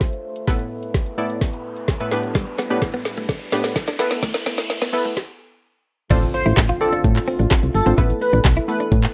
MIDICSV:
0, 0, Header, 1, 10, 480
1, 0, Start_track
1, 0, Tempo, 468750
1, 492, Time_signature, 4, 2, 24, 8
1, 9357, End_track
2, 0, Start_track
2, 0, Title_t, "Digital synth lead"
2, 0, Program_c, 0, 84
2, 6491, Note_on_c, 0, 72, 81
2, 6599, Note_off_c, 0, 72, 0
2, 6971, Note_on_c, 0, 69, 80
2, 7078, Note_off_c, 0, 69, 0
2, 7933, Note_on_c, 0, 69, 81
2, 8040, Note_off_c, 0, 69, 0
2, 8412, Note_on_c, 0, 71, 84
2, 8519, Note_off_c, 0, 71, 0
2, 8894, Note_on_c, 0, 71, 77
2, 9000, Note_off_c, 0, 71, 0
2, 9357, End_track
3, 0, Start_track
3, 0, Title_t, "Synth pluck"
3, 0, Program_c, 1, 84
3, 0, Note_on_c, 1, 57, 91
3, 0, Note_on_c, 1, 62, 83
3, 0, Note_on_c, 1, 65, 84
3, 0, Note_on_c, 1, 69, 84
3, 0, Note_on_c, 1, 72, 98
3, 254, Note_off_c, 1, 57, 0
3, 254, Note_off_c, 1, 62, 0
3, 255, Note_off_c, 1, 65, 0
3, 256, Note_off_c, 1, 69, 0
3, 256, Note_off_c, 1, 72, 0
3, 485, Note_on_c, 1, 45, 85
3, 488, Note_on_c, 1, 59, 81
3, 488, Note_on_c, 1, 64, 82
3, 489, Note_on_c, 1, 69, 83
3, 490, Note_on_c, 1, 71, 96
3, 973, Note_off_c, 1, 45, 0
3, 974, Note_off_c, 1, 59, 0
3, 974, Note_off_c, 1, 64, 0
3, 975, Note_off_c, 1, 69, 0
3, 975, Note_off_c, 1, 71, 0
3, 1205, Note_on_c, 1, 45, 91
3, 1207, Note_on_c, 1, 59, 80
3, 1208, Note_on_c, 1, 64, 80
3, 1209, Note_on_c, 1, 69, 82
3, 1211, Note_on_c, 1, 74, 92
3, 1773, Note_off_c, 1, 45, 0
3, 1774, Note_off_c, 1, 59, 0
3, 1775, Note_off_c, 1, 64, 0
3, 1776, Note_off_c, 1, 69, 0
3, 1777, Note_off_c, 1, 74, 0
3, 2049, Note_on_c, 1, 45, 89
3, 2050, Note_on_c, 1, 59, 82
3, 2051, Note_on_c, 1, 64, 80
3, 2052, Note_on_c, 1, 69, 75
3, 2054, Note_on_c, 1, 71, 97
3, 2155, Note_off_c, 1, 45, 0
3, 2155, Note_off_c, 1, 59, 0
3, 2161, Note_off_c, 1, 71, 0
3, 2167, Note_on_c, 1, 45, 87
3, 2167, Note_on_c, 1, 59, 82
3, 2169, Note_on_c, 1, 62, 83
3, 2171, Note_off_c, 1, 64, 0
3, 2171, Note_on_c, 1, 67, 78
3, 2172, Note_off_c, 1, 69, 0
3, 2173, Note_on_c, 1, 71, 102
3, 2649, Note_off_c, 1, 45, 0
3, 2650, Note_off_c, 1, 59, 0
3, 2651, Note_off_c, 1, 62, 0
3, 2651, Note_off_c, 1, 67, 0
3, 2652, Note_off_c, 1, 71, 0
3, 2767, Note_on_c, 1, 45, 92
3, 2768, Note_on_c, 1, 59, 85
3, 2769, Note_on_c, 1, 62, 81
3, 2771, Note_on_c, 1, 67, 78
3, 2772, Note_on_c, 1, 71, 100
3, 3334, Note_off_c, 1, 45, 0
3, 3335, Note_off_c, 1, 59, 0
3, 3336, Note_off_c, 1, 62, 0
3, 3336, Note_off_c, 1, 67, 0
3, 3337, Note_off_c, 1, 71, 0
3, 3607, Note_on_c, 1, 45, 95
3, 3608, Note_on_c, 1, 59, 89
3, 3610, Note_on_c, 1, 62, 82
3, 3611, Note_on_c, 1, 67, 85
3, 3612, Note_on_c, 1, 71, 102
3, 4074, Note_off_c, 1, 59, 0
3, 4080, Note_off_c, 1, 71, 0
3, 4086, Note_on_c, 1, 59, 89
3, 4088, Note_on_c, 1, 64, 82
3, 4089, Note_off_c, 1, 45, 0
3, 4090, Note_on_c, 1, 69, 85
3, 4091, Note_off_c, 1, 62, 0
3, 4091, Note_off_c, 1, 67, 0
3, 4092, Note_on_c, 1, 71, 103
3, 4857, Note_off_c, 1, 59, 0
3, 4858, Note_off_c, 1, 64, 0
3, 4859, Note_off_c, 1, 69, 0
3, 4860, Note_off_c, 1, 71, 0
3, 5046, Note_on_c, 1, 59, 91
3, 5048, Note_on_c, 1, 64, 83
3, 5050, Note_on_c, 1, 69, 81
3, 5052, Note_on_c, 1, 71, 94
3, 5289, Note_off_c, 1, 59, 0
3, 5290, Note_off_c, 1, 64, 0
3, 5291, Note_off_c, 1, 69, 0
3, 5292, Note_off_c, 1, 71, 0
3, 6249, Note_on_c, 1, 60, 95
3, 6250, Note_on_c, 1, 62, 89
3, 6252, Note_on_c, 1, 65, 90
3, 6253, Note_on_c, 1, 69, 90
3, 6254, Note_on_c, 1, 72, 105
3, 6735, Note_off_c, 1, 60, 0
3, 6735, Note_off_c, 1, 62, 0
3, 6736, Note_off_c, 1, 65, 0
3, 6737, Note_off_c, 1, 69, 0
3, 6738, Note_off_c, 1, 72, 0
3, 6971, Note_on_c, 1, 60, 81
3, 6971, Note_on_c, 1, 62, 71
3, 6972, Note_on_c, 1, 65, 70
3, 6973, Note_on_c, 1, 69, 69
3, 6975, Note_on_c, 1, 74, 92
3, 7617, Note_off_c, 1, 60, 0
3, 7617, Note_off_c, 1, 62, 0
3, 7618, Note_off_c, 1, 65, 0
3, 7618, Note_off_c, 1, 69, 0
3, 7619, Note_off_c, 1, 74, 0
3, 8050, Note_on_c, 1, 60, 78
3, 8051, Note_on_c, 1, 62, 72
3, 8053, Note_on_c, 1, 65, 72
3, 8053, Note_on_c, 1, 69, 68
3, 8055, Note_on_c, 1, 72, 85
3, 8131, Note_off_c, 1, 60, 0
3, 8132, Note_off_c, 1, 62, 0
3, 8133, Note_off_c, 1, 65, 0
3, 8133, Note_off_c, 1, 69, 0
3, 8134, Note_off_c, 1, 72, 0
3, 8168, Note_on_c, 1, 57, 94
3, 8170, Note_on_c, 1, 59, 89
3, 8172, Note_on_c, 1, 64, 92
3, 8173, Note_on_c, 1, 69, 88
3, 8175, Note_on_c, 1, 71, 105
3, 8654, Note_off_c, 1, 57, 0
3, 8655, Note_off_c, 1, 59, 0
3, 8656, Note_off_c, 1, 64, 0
3, 8657, Note_off_c, 1, 69, 0
3, 8658, Note_off_c, 1, 71, 0
3, 8889, Note_on_c, 1, 57, 81
3, 8890, Note_on_c, 1, 59, 74
3, 8891, Note_on_c, 1, 64, 72
3, 8893, Note_on_c, 1, 69, 75
3, 8894, Note_on_c, 1, 71, 91
3, 9357, Note_off_c, 1, 57, 0
3, 9357, Note_off_c, 1, 59, 0
3, 9357, Note_off_c, 1, 64, 0
3, 9357, Note_off_c, 1, 69, 0
3, 9357, Note_off_c, 1, 71, 0
3, 9357, End_track
4, 0, Start_track
4, 0, Title_t, "Clean electric guitar"
4, 0, Program_c, 2, 27
4, 2408, Note_on_c, 2, 55, 86
4, 2498, Note_off_c, 2, 55, 0
4, 2650, Note_on_c, 2, 59, 92
4, 2739, Note_off_c, 2, 59, 0
4, 3008, Note_on_c, 2, 59, 77
4, 3098, Note_off_c, 2, 59, 0
4, 3253, Note_on_c, 2, 57, 77
4, 3341, Note_off_c, 2, 57, 0
4, 3610, Note_on_c, 2, 59, 81
4, 3699, Note_off_c, 2, 59, 0
4, 3973, Note_on_c, 2, 62, 84
4, 4061, Note_off_c, 2, 62, 0
4, 4091, Note_on_c, 2, 59, 81
4, 4179, Note_off_c, 2, 59, 0
4, 4332, Note_on_c, 2, 57, 89
4, 4420, Note_off_c, 2, 57, 0
4, 4572, Note_on_c, 2, 59, 94
4, 4661, Note_off_c, 2, 59, 0
4, 4932, Note_on_c, 2, 59, 80
4, 5020, Note_off_c, 2, 59, 0
4, 5174, Note_on_c, 2, 57, 83
4, 5261, Note_off_c, 2, 57, 0
4, 6254, Note_on_c, 2, 62, 96
4, 6342, Note_off_c, 2, 62, 0
4, 6614, Note_on_c, 2, 64, 78
4, 6701, Note_off_c, 2, 64, 0
4, 6853, Note_on_c, 2, 65, 76
4, 6941, Note_off_c, 2, 65, 0
4, 7092, Note_on_c, 2, 62, 70
4, 7181, Note_off_c, 2, 62, 0
4, 7451, Note_on_c, 2, 60, 86
4, 7540, Note_off_c, 2, 60, 0
4, 7571, Note_on_c, 2, 62, 80
4, 7660, Note_off_c, 2, 62, 0
4, 7690, Note_on_c, 2, 60, 99
4, 7779, Note_off_c, 2, 60, 0
4, 8050, Note_on_c, 2, 60, 79
4, 8139, Note_off_c, 2, 60, 0
4, 8170, Note_on_c, 2, 64, 93
4, 8259, Note_off_c, 2, 64, 0
4, 8532, Note_on_c, 2, 62, 83
4, 8620, Note_off_c, 2, 62, 0
4, 8773, Note_on_c, 2, 64, 79
4, 8861, Note_off_c, 2, 64, 0
4, 9013, Note_on_c, 2, 62, 75
4, 9101, Note_off_c, 2, 62, 0
4, 9357, End_track
5, 0, Start_track
5, 0, Title_t, "French horn section"
5, 0, Program_c, 3, 60
5, 0, Note_on_c, 3, 57, 76
5, 0, Note_on_c, 3, 62, 65
5, 0, Note_on_c, 3, 65, 68
5, 0, Note_on_c, 3, 72, 81
5, 470, Note_off_c, 3, 62, 0
5, 470, Note_off_c, 3, 72, 0
5, 471, Note_off_c, 3, 65, 0
5, 488, Note_on_c, 3, 59, 69
5, 488, Note_on_c, 3, 71, 85
5, 490, Note_on_c, 3, 64, 67
5, 2134, Note_off_c, 3, 57, 0
5, 2154, Note_off_c, 3, 64, 0
5, 2164, Note_on_c, 3, 55, 73
5, 2165, Note_on_c, 3, 45, 79
5, 2165, Note_on_c, 3, 62, 72
5, 4068, Note_off_c, 3, 55, 0
5, 4069, Note_off_c, 3, 45, 0
5, 4069, Note_off_c, 3, 62, 0
5, 4091, Note_on_c, 3, 57, 84
5, 4092, Note_on_c, 3, 64, 72
5, 5249, Note_off_c, 3, 59, 0
5, 5249, Note_off_c, 3, 71, 0
5, 5280, Note_off_c, 3, 57, 0
5, 5280, Note_off_c, 3, 64, 0
5, 6254, Note_on_c, 3, 50, 78
5, 6254, Note_on_c, 3, 65, 94
5, 6256, Note_on_c, 3, 57, 75
5, 6257, Note_on_c, 3, 60, 76
5, 8154, Note_off_c, 3, 50, 0
5, 8154, Note_off_c, 3, 65, 0
5, 8155, Note_off_c, 3, 60, 0
5, 8168, Note_on_c, 3, 52, 82
5, 8169, Note_on_c, 3, 59, 76
5, 8172, Note_on_c, 3, 69, 91
5, 9357, Note_off_c, 3, 52, 0
5, 9357, Note_off_c, 3, 57, 0
5, 9357, Note_off_c, 3, 59, 0
5, 9357, Note_off_c, 3, 69, 0
5, 9357, End_track
6, 0, Start_track
6, 0, Title_t, "FM bass"
6, 0, Program_c, 4, 39
6, 6252, Note_on_c, 4, 33, 108
6, 6404, Note_off_c, 4, 33, 0
6, 6613, Note_on_c, 4, 33, 106
6, 6689, Note_off_c, 4, 33, 0
6, 6731, Note_on_c, 4, 33, 101
6, 6883, Note_off_c, 4, 33, 0
6, 7214, Note_on_c, 4, 45, 103
6, 7365, Note_off_c, 4, 45, 0
6, 7573, Note_on_c, 4, 33, 94
6, 7649, Note_off_c, 4, 33, 0
6, 7814, Note_on_c, 4, 36, 88
6, 7889, Note_off_c, 4, 36, 0
6, 7933, Note_on_c, 4, 31, 102
6, 8009, Note_off_c, 4, 31, 0
6, 8052, Note_on_c, 4, 32, 89
6, 8128, Note_off_c, 4, 32, 0
6, 8172, Note_on_c, 4, 33, 104
6, 8324, Note_off_c, 4, 33, 0
6, 8531, Note_on_c, 4, 33, 105
6, 8607, Note_off_c, 4, 33, 0
6, 8650, Note_on_c, 4, 35, 97
6, 8803, Note_off_c, 4, 35, 0
6, 9133, Note_on_c, 4, 45, 98
6, 9284, Note_off_c, 4, 45, 0
6, 9357, End_track
7, 0, Start_track
7, 0, Title_t, "Impact"
7, 0, Program_c, 5, 103
7, 6252, Note_on_c, 5, 60, 84
7, 8172, Note_off_c, 5, 60, 0
7, 9357, End_track
8, 0, Start_track
8, 0, Title_t, "Riser"
8, 0, Program_c, 6, 103
8, 0, Note_on_c, 6, 60, 75
8, 5291, Note_off_c, 6, 60, 0
8, 9357, End_track
9, 0, Start_track
9, 0, Title_t, "Muted clean electric guitar strokes"
9, 2531, Note_on_c, 9, 29, 44
9, 2634, Note_off_c, 9, 29, 0
9, 3131, Note_on_c, 9, 29, 48
9, 3233, Note_off_c, 9, 29, 0
9, 3851, Note_on_c, 9, 29, 48
9, 3953, Note_off_c, 9, 29, 0
9, 4453, Note_on_c, 9, 29, 47
9, 4555, Note_off_c, 9, 29, 0
9, 5053, Note_on_c, 9, 29, 48
9, 5156, Note_off_c, 9, 29, 0
9, 6494, Note_on_c, 9, 29, 49
9, 6597, Note_off_c, 9, 29, 0
9, 6971, Note_on_c, 9, 29, 52
9, 7074, Note_off_c, 9, 29, 0
9, 7211, Note_on_c, 9, 29, 47
9, 7314, Note_off_c, 9, 29, 0
9, 7931, Note_on_c, 9, 29, 49
9, 8033, Note_off_c, 9, 29, 0
9, 8412, Note_on_c, 9, 29, 47
9, 8514, Note_off_c, 9, 29, 0
9, 8892, Note_on_c, 9, 29, 50
9, 8994, Note_off_c, 9, 29, 0
9, 9132, Note_on_c, 9, 29, 47
9, 9234, Note_off_c, 9, 29, 0
9, 9357, End_track
10, 0, Start_track
10, 0, Title_t, "Drums"
10, 8, Note_on_c, 9, 38, 67
10, 10, Note_on_c, 9, 36, 116
10, 110, Note_off_c, 9, 38, 0
10, 112, Note_off_c, 9, 36, 0
10, 129, Note_on_c, 9, 42, 46
10, 232, Note_off_c, 9, 42, 0
10, 368, Note_on_c, 9, 42, 84
10, 470, Note_off_c, 9, 42, 0
10, 486, Note_on_c, 9, 38, 73
10, 489, Note_on_c, 9, 36, 113
10, 588, Note_off_c, 9, 38, 0
10, 591, Note_off_c, 9, 36, 0
10, 606, Note_on_c, 9, 42, 54
10, 709, Note_off_c, 9, 42, 0
10, 847, Note_on_c, 9, 42, 67
10, 950, Note_off_c, 9, 42, 0
10, 966, Note_on_c, 9, 38, 73
10, 967, Note_on_c, 9, 36, 110
10, 1069, Note_off_c, 9, 38, 0
10, 1070, Note_off_c, 9, 36, 0
10, 1086, Note_on_c, 9, 42, 57
10, 1189, Note_off_c, 9, 42, 0
10, 1330, Note_on_c, 9, 42, 83
10, 1432, Note_off_c, 9, 42, 0
10, 1447, Note_on_c, 9, 38, 79
10, 1449, Note_on_c, 9, 36, 114
10, 1549, Note_off_c, 9, 38, 0
10, 1551, Note_off_c, 9, 36, 0
10, 1570, Note_on_c, 9, 42, 55
10, 1672, Note_off_c, 9, 42, 0
10, 1806, Note_on_c, 9, 42, 75
10, 1909, Note_off_c, 9, 42, 0
10, 1925, Note_on_c, 9, 38, 85
10, 1928, Note_on_c, 9, 36, 116
10, 2028, Note_off_c, 9, 38, 0
10, 2031, Note_off_c, 9, 36, 0
10, 2049, Note_on_c, 9, 42, 49
10, 2151, Note_off_c, 9, 42, 0
10, 2166, Note_on_c, 9, 38, 86
10, 2268, Note_off_c, 9, 38, 0
10, 2287, Note_on_c, 9, 42, 84
10, 2390, Note_off_c, 9, 42, 0
10, 2406, Note_on_c, 9, 38, 92
10, 2408, Note_on_c, 9, 36, 117
10, 2509, Note_off_c, 9, 38, 0
10, 2510, Note_off_c, 9, 36, 0
10, 2525, Note_on_c, 9, 42, 51
10, 2628, Note_off_c, 9, 42, 0
10, 2646, Note_on_c, 9, 46, 78
10, 2647, Note_on_c, 9, 38, 87
10, 2748, Note_off_c, 9, 46, 0
10, 2749, Note_off_c, 9, 38, 0
10, 2766, Note_on_c, 9, 42, 70
10, 2869, Note_off_c, 9, 42, 0
10, 2885, Note_on_c, 9, 38, 89
10, 2887, Note_on_c, 9, 36, 113
10, 2988, Note_off_c, 9, 38, 0
10, 2989, Note_off_c, 9, 36, 0
10, 3005, Note_on_c, 9, 42, 61
10, 3108, Note_off_c, 9, 42, 0
10, 3125, Note_on_c, 9, 46, 72
10, 3126, Note_on_c, 9, 38, 98
10, 3228, Note_off_c, 9, 46, 0
10, 3229, Note_off_c, 9, 38, 0
10, 3249, Note_on_c, 9, 42, 89
10, 3351, Note_off_c, 9, 42, 0
10, 3367, Note_on_c, 9, 38, 99
10, 3369, Note_on_c, 9, 36, 112
10, 3469, Note_off_c, 9, 38, 0
10, 3472, Note_off_c, 9, 36, 0
10, 3489, Note_on_c, 9, 42, 59
10, 3591, Note_off_c, 9, 42, 0
10, 3606, Note_on_c, 9, 46, 76
10, 3608, Note_on_c, 9, 38, 104
10, 3709, Note_off_c, 9, 46, 0
10, 3711, Note_off_c, 9, 38, 0
10, 3726, Note_on_c, 9, 42, 77
10, 3727, Note_on_c, 9, 38, 103
10, 3828, Note_off_c, 9, 42, 0
10, 3829, Note_off_c, 9, 38, 0
10, 3848, Note_on_c, 9, 38, 107
10, 3849, Note_on_c, 9, 36, 120
10, 3950, Note_off_c, 9, 38, 0
10, 3952, Note_off_c, 9, 36, 0
10, 3970, Note_on_c, 9, 38, 99
10, 3971, Note_on_c, 9, 42, 53
10, 4072, Note_off_c, 9, 38, 0
10, 4073, Note_off_c, 9, 42, 0
10, 4087, Note_on_c, 9, 38, 107
10, 4087, Note_on_c, 9, 46, 87
10, 4189, Note_off_c, 9, 38, 0
10, 4189, Note_off_c, 9, 46, 0
10, 4207, Note_on_c, 9, 38, 103
10, 4207, Note_on_c, 9, 42, 86
10, 4309, Note_off_c, 9, 38, 0
10, 4310, Note_off_c, 9, 42, 0
10, 4328, Note_on_c, 9, 38, 110
10, 4328, Note_on_c, 9, 82, 78
10, 4329, Note_on_c, 9, 36, 123
10, 4430, Note_off_c, 9, 38, 0
10, 4430, Note_off_c, 9, 82, 0
10, 4431, Note_off_c, 9, 36, 0
10, 4446, Note_on_c, 9, 42, 55
10, 4446, Note_on_c, 9, 82, 55
10, 4447, Note_on_c, 9, 38, 109
10, 4548, Note_off_c, 9, 42, 0
10, 4548, Note_off_c, 9, 82, 0
10, 4549, Note_off_c, 9, 38, 0
10, 4569, Note_on_c, 9, 46, 81
10, 4569, Note_on_c, 9, 82, 55
10, 4570, Note_on_c, 9, 38, 106
10, 4671, Note_off_c, 9, 46, 0
10, 4671, Note_off_c, 9, 82, 0
10, 4672, Note_off_c, 9, 38, 0
10, 4690, Note_on_c, 9, 38, 107
10, 4690, Note_on_c, 9, 42, 67
10, 4690, Note_on_c, 9, 82, 70
10, 4792, Note_off_c, 9, 42, 0
10, 4792, Note_off_c, 9, 82, 0
10, 4793, Note_off_c, 9, 38, 0
10, 4810, Note_on_c, 9, 82, 69
10, 4811, Note_on_c, 9, 38, 111
10, 4913, Note_off_c, 9, 82, 0
10, 4914, Note_off_c, 9, 38, 0
10, 4931, Note_on_c, 9, 42, 61
10, 4931, Note_on_c, 9, 82, 60
10, 4933, Note_on_c, 9, 38, 115
10, 5034, Note_off_c, 9, 42, 0
10, 5034, Note_off_c, 9, 82, 0
10, 5035, Note_off_c, 9, 38, 0
10, 5053, Note_on_c, 9, 46, 77
10, 5053, Note_on_c, 9, 82, 53
10, 5156, Note_off_c, 9, 46, 0
10, 5156, Note_off_c, 9, 82, 0
10, 5177, Note_on_c, 9, 42, 88
10, 5177, Note_on_c, 9, 82, 85
10, 5279, Note_off_c, 9, 42, 0
10, 5279, Note_off_c, 9, 82, 0
10, 5292, Note_on_c, 9, 36, 112
10, 5294, Note_on_c, 9, 38, 89
10, 5394, Note_off_c, 9, 36, 0
10, 5397, Note_off_c, 9, 38, 0
10, 6253, Note_on_c, 9, 36, 126
10, 6254, Note_on_c, 9, 42, 79
10, 6254, Note_on_c, 9, 49, 111
10, 6254, Note_on_c, 9, 82, 75
10, 6355, Note_off_c, 9, 36, 0
10, 6356, Note_off_c, 9, 42, 0
10, 6356, Note_off_c, 9, 49, 0
10, 6356, Note_off_c, 9, 82, 0
10, 6372, Note_on_c, 9, 42, 55
10, 6372, Note_on_c, 9, 82, 54
10, 6474, Note_off_c, 9, 42, 0
10, 6474, Note_off_c, 9, 82, 0
10, 6492, Note_on_c, 9, 46, 80
10, 6492, Note_on_c, 9, 82, 58
10, 6594, Note_off_c, 9, 46, 0
10, 6594, Note_off_c, 9, 82, 0
10, 6614, Note_on_c, 9, 42, 51
10, 6614, Note_on_c, 9, 82, 72
10, 6716, Note_off_c, 9, 42, 0
10, 6716, Note_off_c, 9, 82, 0
10, 6725, Note_on_c, 9, 38, 91
10, 6730, Note_on_c, 9, 39, 113
10, 6730, Note_on_c, 9, 42, 71
10, 6730, Note_on_c, 9, 82, 69
10, 6732, Note_on_c, 9, 36, 117
10, 6827, Note_off_c, 9, 38, 0
10, 6833, Note_off_c, 9, 39, 0
10, 6833, Note_off_c, 9, 42, 0
10, 6833, Note_off_c, 9, 82, 0
10, 6834, Note_off_c, 9, 36, 0
10, 6852, Note_on_c, 9, 42, 62
10, 6852, Note_on_c, 9, 82, 63
10, 6954, Note_off_c, 9, 42, 0
10, 6954, Note_off_c, 9, 82, 0
10, 6971, Note_on_c, 9, 46, 74
10, 6971, Note_on_c, 9, 82, 53
10, 7073, Note_off_c, 9, 46, 0
10, 7073, Note_off_c, 9, 82, 0
10, 7094, Note_on_c, 9, 42, 65
10, 7094, Note_on_c, 9, 82, 87
10, 7197, Note_off_c, 9, 42, 0
10, 7197, Note_off_c, 9, 82, 0
10, 7212, Note_on_c, 9, 42, 78
10, 7212, Note_on_c, 9, 82, 77
10, 7213, Note_on_c, 9, 36, 116
10, 7315, Note_off_c, 9, 42, 0
10, 7315, Note_off_c, 9, 82, 0
10, 7316, Note_off_c, 9, 36, 0
10, 7333, Note_on_c, 9, 39, 79
10, 7334, Note_on_c, 9, 42, 58
10, 7334, Note_on_c, 9, 82, 60
10, 7435, Note_off_c, 9, 39, 0
10, 7437, Note_off_c, 9, 42, 0
10, 7437, Note_off_c, 9, 82, 0
10, 7452, Note_on_c, 9, 46, 78
10, 7452, Note_on_c, 9, 82, 55
10, 7555, Note_off_c, 9, 46, 0
10, 7555, Note_off_c, 9, 82, 0
10, 7574, Note_on_c, 9, 42, 58
10, 7574, Note_on_c, 9, 82, 80
10, 7676, Note_off_c, 9, 42, 0
10, 7676, Note_off_c, 9, 82, 0
10, 7686, Note_on_c, 9, 38, 89
10, 7690, Note_on_c, 9, 42, 87
10, 7690, Note_on_c, 9, 82, 86
10, 7692, Note_on_c, 9, 36, 125
10, 7692, Note_on_c, 9, 39, 112
10, 7788, Note_off_c, 9, 38, 0
10, 7792, Note_off_c, 9, 42, 0
10, 7792, Note_off_c, 9, 82, 0
10, 7794, Note_off_c, 9, 39, 0
10, 7795, Note_off_c, 9, 36, 0
10, 7815, Note_on_c, 9, 42, 52
10, 7815, Note_on_c, 9, 82, 52
10, 7917, Note_off_c, 9, 42, 0
10, 7917, Note_off_c, 9, 82, 0
10, 7933, Note_on_c, 9, 46, 86
10, 7933, Note_on_c, 9, 82, 62
10, 8035, Note_off_c, 9, 46, 0
10, 8035, Note_off_c, 9, 82, 0
10, 8055, Note_on_c, 9, 42, 65
10, 8055, Note_on_c, 9, 82, 89
10, 8157, Note_off_c, 9, 42, 0
10, 8157, Note_off_c, 9, 82, 0
10, 8172, Note_on_c, 9, 36, 127
10, 8174, Note_on_c, 9, 42, 75
10, 8174, Note_on_c, 9, 82, 78
10, 8275, Note_off_c, 9, 36, 0
10, 8277, Note_off_c, 9, 42, 0
10, 8277, Note_off_c, 9, 82, 0
10, 8293, Note_on_c, 9, 42, 54
10, 8293, Note_on_c, 9, 82, 55
10, 8396, Note_off_c, 9, 42, 0
10, 8396, Note_off_c, 9, 82, 0
10, 8414, Note_on_c, 9, 46, 84
10, 8414, Note_on_c, 9, 82, 57
10, 8516, Note_off_c, 9, 46, 0
10, 8516, Note_off_c, 9, 82, 0
10, 8534, Note_on_c, 9, 42, 54
10, 8534, Note_on_c, 9, 82, 72
10, 8637, Note_off_c, 9, 42, 0
10, 8637, Note_off_c, 9, 82, 0
10, 8646, Note_on_c, 9, 38, 92
10, 8651, Note_on_c, 9, 36, 115
10, 8652, Note_on_c, 9, 39, 116
10, 8652, Note_on_c, 9, 42, 65
10, 8652, Note_on_c, 9, 82, 69
10, 8748, Note_off_c, 9, 38, 0
10, 8754, Note_off_c, 9, 36, 0
10, 8754, Note_off_c, 9, 39, 0
10, 8754, Note_off_c, 9, 42, 0
10, 8754, Note_off_c, 9, 82, 0
10, 8772, Note_on_c, 9, 42, 62
10, 8772, Note_on_c, 9, 82, 62
10, 8874, Note_off_c, 9, 42, 0
10, 8874, Note_off_c, 9, 82, 0
10, 8892, Note_on_c, 9, 46, 78
10, 8892, Note_on_c, 9, 82, 55
10, 8994, Note_off_c, 9, 46, 0
10, 8994, Note_off_c, 9, 82, 0
10, 9015, Note_on_c, 9, 42, 60
10, 9015, Note_on_c, 9, 82, 90
10, 9118, Note_off_c, 9, 42, 0
10, 9118, Note_off_c, 9, 82, 0
10, 9132, Note_on_c, 9, 36, 120
10, 9133, Note_on_c, 9, 42, 80
10, 9133, Note_on_c, 9, 82, 75
10, 9235, Note_off_c, 9, 36, 0
10, 9235, Note_off_c, 9, 42, 0
10, 9235, Note_off_c, 9, 82, 0
10, 9252, Note_on_c, 9, 39, 77
10, 9254, Note_on_c, 9, 42, 59
10, 9254, Note_on_c, 9, 82, 61
10, 9355, Note_off_c, 9, 39, 0
10, 9356, Note_off_c, 9, 42, 0
10, 9356, Note_off_c, 9, 82, 0
10, 9357, End_track
0, 0, End_of_file